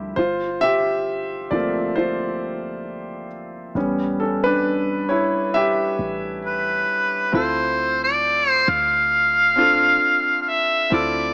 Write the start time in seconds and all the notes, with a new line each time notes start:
Already playing: D2 F3 G3 C4 E4 G4 E5
0.16 G1 F4 C5
0.61 G4 E5
1.51 G1 F3 A3 A#3 C4 F4 D5
1.96 F4 C5
3.75 A1 G3 B3 C#4
4.20 C#4 A4
4.44 D4 B4
5.09 E4 C#5
5.54 G4 E5
5.99 A1
6.45 B4
7.32 D2 C4 E4 F4 A4 C5
8.04 D5
8.50 C5
8.68 D2 F5
9.56 C4 D4 F4 A4
10.42 F5
10.49 E5
10.90 D2 C4 E4 F4 A4 D5